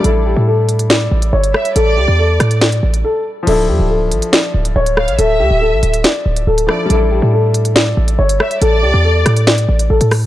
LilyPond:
<<
  \new Staff \with { instrumentName = "Violin section" } { \time 4/4 \key d \minor \tempo 4 = 140 r2. r8 e''8 | d''2 r2 | r2. r8 f''8 | e''2 r4. d''8 |
r2. r8 e''8 | d''2 r2 | }
  \new Staff \with { instrumentName = "Grand piano" } { \time 4/4 \key d \minor a'8 g'8 a'4 d''4 cis''4 | a'8 g'8 a'4 d''4 a'8 r8 | a'8 g'8 a'4 d''4 cis''4 | a'8 g'8 a'4 d''4 a'8 r8 |
a'8 g'8 a'4 d''4 cis''4 | a'8 g'8 a'4 d''4 a'8 r8 | }
  \new Staff \with { instrumentName = "Felt piano" } { \time 4/4 \key d \minor <g d' e' a'>1~ | <g d' e' a'>1 | <f d' e' a'>1~ | <f d' e' a'>2.~ <f d' e' a'>8 <f d' e' a'>8 |
<g d' e' a'>1~ | <g d' e' a'>1 | }
  \new Staff \with { instrumentName = "808-style bass" } { \clef bass \time 4/4 \key d \minor a,,8. a,4.~ a,16 a,,8 g,,8 r8 | a,,8 cis,16 e,8. a,4 a,,8 r4 | d,,8 f,16 d,,8. a,,16 r8. d,,8 d,,8. a,,16 | d,,8 d,16 d,,8 a,,16 d,,8 r8 d,,8 d,,8 r8 |
a,,8. a,4.~ a,16 a,,8 g,,8 r8 | a,,8 cis,16 e,8. a,4 a,,8 a,,16 a,8. | }
  \new DrumStaff \with { instrumentName = "Drums" } \drummode { \time 4/4 hh4 r8 hh16 hh16 sn8. hh16 r16 hh16 ss16 hh16 | hh4 r8 <hh ss>16 hh16 <hh sn>16 hh8 hh16 r4 | <cymc hh>4 r8 hh16 hh16 sn8. hh16 r16 hh16 ss16 hh16 | hh4 r8 hh16 hh16 <hh sn>8. hh16 r16 hh16 ss8 |
hh4 r8 hh16 hh16 sn8. hh16 r16 hh16 ss16 hh16 | hh4 r8 <hh ss>16 hh16 <hh sn>16 hh8 hh16 r16 hh16 <hho ss>8 | }
>>